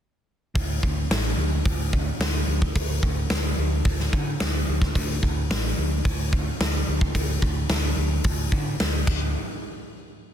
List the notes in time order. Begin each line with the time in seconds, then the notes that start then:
0.55 D2, kick, open hi-hat
0.83 D2, kick
1.10 A1, snare, open hi-hat
1.37 D2
1.65 D2, kick, open hi-hat
1.93 kick
2.20 D2, snare, open hi-hat
2.47 D2
2.62 kick
2.75 D2, kick, open hi-hat
3.03 D2, kick
3.30 D2, snare, open hi-hat
3.58 D2
3.85 D2, kick, open hi-hat
4.00 snare
4.13 D3, kick
4.40 D2, snare, open hi-hat
4.68 D2
4.82 kick, snare
4.95 D2, kick, open hi-hat
5.22 D2, kick
5.50 A1, snare, open hi-hat
5.78 D2
6.05 D2, kick, open hi-hat
6.33 kick
6.60 D2, snare, open hi-hat
6.88 D2
7.01 kick
7.15 D2, kick, open hi-hat
7.42 D2, kick
7.69 D2, snare, open hi-hat
7.97 D2
8.24 D2, kick, open hi-hat
8.52 D3, kick
8.80 D2, snare, open hi-hat
9.07 D2, kick, crash